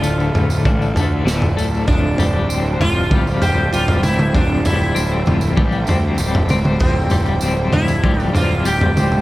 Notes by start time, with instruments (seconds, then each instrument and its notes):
Already playing: clean electric guitar D2 D3, string section F3 D4 A4 D5, sitar F4
0.02 picked electric bass D1, clean electric guitar A3, tambourine
0.20 tambourine
0.34 picked electric bass D1, clean electric guitar A2, floor tom, tambourine
0.50 tambourine
0.65 picked electric bass A1, clean electric guitar D3, kick, mid tom, tambourine
0.82 tambourine
0.95 picked electric bass D2, clean electric guitar A3, floor tom, tambourine
1.25 picked electric bass D1, clean electric guitar D3, snare, tambourine
1.42 floor tom, tambourine
1.57 picked electric bass D1, clean electric guitar A3, tambourine
1.74 tambourine
1.87 picked electric bass D1, clean electric guitar F2, sitar D4, string section C5 G5, kick, floor tom, tambourine
2.18 picked electric bass D1, clean electric guitar G3, floor tom, tambourine
2.49 picked electric bass D1, clean electric guitar C4, tambourine
2.66 tambourine
2.80 picked electric bass D1, clean electric guitar F3, sitar F4, floor tom, mid tom, tambourine
3.11 picked electric bass D1, clean electric guitar G3, kick, mid tom
3.27 tambourine
3.42 picked electric bass D1, clean electric guitar C4, sitar G4, floor tom, tambourine
3.73 picked electric bass D1, clean electric guitar G3, sitar F4, tambourine
3.88 floor tom, tambourine
4.03 picked electric bass D1, clean electric guitar C4, sitar E4, mid tom, tambourine
4.19 mid tom, tambourine
4.34 picked electric bass D1, clean electric guitar F2, sitar D4, kick, floor tom, tambourine
4.65 picked electric bass D1, clean electric guitar G3, sitar E4, floor tom, tambourine
4.81 tambourine
4.95 picked electric bass D1, clean electric guitar C4, tambourine
5.11 tambourine
5.26 picked electric bass D1, clean electric guitar F3, floor tom, mid tom, tambourine
5.41 tambourine
5.57 picked electric bass A1, clean electric guitar G3, kick, mid tom
5.72 tambourine
5.87 picked electric bass D2, clean electric guitar C4, floor tom, tambourine
6.18 picked electric bass D1, clean electric guitar G3, tambourine
6.35 floor tom
6.49 picked electric bass D1, clean electric guitar C4, mid tom, tambourine
6.64 mid tom, tambourine
6.79 picked electric bass D1, clean electric guitar F2, sitar C4, string section D5, kick, floor tom, tambourine
7.10 picked electric bass D1, clean electric guitar G3, floor tom, tambourine
7.26 tambourine
7.41 picked electric bass D1, clean electric guitar C4, tambourine
7.72 picked electric bass D1, clean electric guitar F3, sitar E4, floor tom, mid tom, tambourine
7.88 tambourine
8.03 picked electric bass D1, clean electric guitar G3, kick, mid tom
8.20 sitar D4, tambourine
8.34 picked electric bass D1, clean electric guitar C4, sitar F4, floor tom, tambourine
8.65 picked electric bass D1, clean electric guitar G3, sitar G4, tambourine
8.81 floor tom, tambourine
8.96 picked electric bass D1, clean electric guitar C4, mid tom, tambourine
9.12 mid tom, tambourine